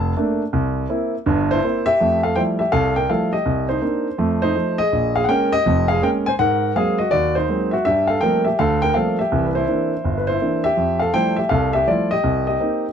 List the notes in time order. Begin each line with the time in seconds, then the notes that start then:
Already playing: F1 A5
0.17 A3 A#3 D4
0.53 C2
0.89 A#3 C4 E4
1.26 G1 G2
1.51 E4 C5
1.64 A#3 C4 E4
1.86 G4 E5
2.00 F2 A3
2.23 A4 F5
2.36 F3 G3 A3 E4 C5 G5
2.59 G4 E5
2.72 C2 A4 F5
2.96 A#4 G5
3.09 F3 G3 A3 E4 A4 F5
3.33 G4 D#5
3.46 C2
3.69 D#4 C5
3.82 A#3 C4 D4 D#4
4.18 F2 A3
4.42 D#4 C5
4.55 F3 A3 D#4
4.78 G#4 D#5
4.93 A#1
5.16 G#4 F5
5.24 F#5
5.28 G#3 A#3 C#4 A#4 G5
5.52 G4 D#5
5.66 F1 F2
5.88 G#4 F5
6.02 G#3 A#3 C#4 A#4 G5
6.26 C5 G#5
6.39 G#2 A#4 F#5
6.76 F#3 G#3 A#3 C4 G#4 F5
6.98 F#4 D#5
7.11 D#2 F#4 D5
7.35 D#4 C5
7.49 F#3 G#3 A#3 C4
7.71 F#4 E5
7.85 G2 G3 G4 E5
8.07 A4 F5
8.21 F3 G3 A3 A#3 C4 A#4 G5
8.45 G4 E5
8.59 D2 A4 F5
8.82 A#4 G5
8.94 F3 G3 A3 A#3 C4 A4 F5
9.19 G4 E5
9.32 C2 E3
9.46 B4
9.55 E4 C5
9.68 E3 A#3 C4 D4
10.04 G1
10.18 B4
10.27 E4 C5
10.41 E3 A#3 C4 D4
10.64 G4 E5
10.77 F2
10.99 A4 F5
11.14 F3 G3 A3 E4 C5 G5
11.37 G4 E5
11.49 C2 A4 F5
11.73 G4 E5
11.87 F3 G3 A3 E4 F4 D5
12.11 G4 D#5
12.24 C2
12.47 G4 D#5
12.60 A#3 C4 D#4